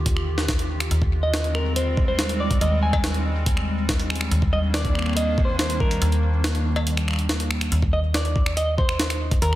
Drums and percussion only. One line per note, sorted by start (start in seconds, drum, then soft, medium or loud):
0.06 kick loud
0.06 closed hi-hat medium
0.17 finger snap medium
0.38 snare medium
0.48 kick loud
0.48 snare loud
0.48 closed hi-hat medium
0.59 closed hi-hat medium
0.80 finger snap medium
0.80 closed hi-hat medium
0.91 closed hi-hat medium
1.02 kick loud
1.34 snare loud
1.34 closed hi-hat medium
1.44 closed hi-hat soft
1.55 finger snap medium
1.76 closed hi-hat medium
1.97 kick loud
2.19 snare loud
2.19 closed hi-hat medium
2.29 closed hi-hat medium
2.51 kick loud
2.51 closed hi-hat medium
2.61 closed hi-hat medium
2.93 kick loud
2.93 cowbell medium
3.04 snare loud
3.04 closed hi-hat medium
3.14 closed hi-hat soft
3.46 kick loud
3.46 closed hi-hat medium
3.57 finger snap medium
3.89 kick loud
3.89 snare loud
3.89 closed hi-hat medium
4.00 closed hi-hat medium
4.10 finger snap medium
4.16 closed hi-hat medium
4.21 finger snap medium
4.31 closed hi-hat medium
4.42 kick loud
4.74 snare loud
4.74 closed hi-hat medium
4.85 kick loud
4.85 closed hi-hat soft
4.95 finger snap medium
4.99 finger snap soft
5.02 finger snap soft
5.06 finger snap soft
5.09 finger snap soft
5.13 finger snap soft
5.13 closed hi-hat medium
5.38 kick loud
5.59 snare loud
5.59 closed hi-hat medium
5.70 closed hi-hat medium
5.80 kick loud
5.91 closed hi-hat medium
6.02 closed hi-hat medium
6.12 closed hi-hat soft
6.44 snare loud
6.44 closed hi-hat medium
6.55 closed hi-hat soft
6.76 cowbell medium
6.87 closed hi-hat medium
6.97 finger snap medium
6.97 closed hi-hat soft
7.08 finger snap medium
7.11 finger snap soft
7.13 finger snap soft
7.16 finger snap soft
7.16 closed hi-hat soft
7.29 snare loud
7.29 closed hi-hat medium
7.40 closed hi-hat medium
7.51 finger snap medium
7.61 finger snap medium
7.61 closed hi-hat medium
7.72 closed hi-hat medium
7.82 kick loud
8.14 snare loud
8.14 closed hi-hat medium
8.25 closed hi-hat soft
8.36 kick loud
8.46 finger snap medium
8.57 closed hi-hat medium
8.78 kick loud
8.89 finger snap medium
9.00 snare loud
9.00 closed hi-hat medium
9.10 finger snap medium
9.10 closed hi-hat medium
9.31 kick loud
9.31 closed hi-hat medium
9.42 closed hi-hat medium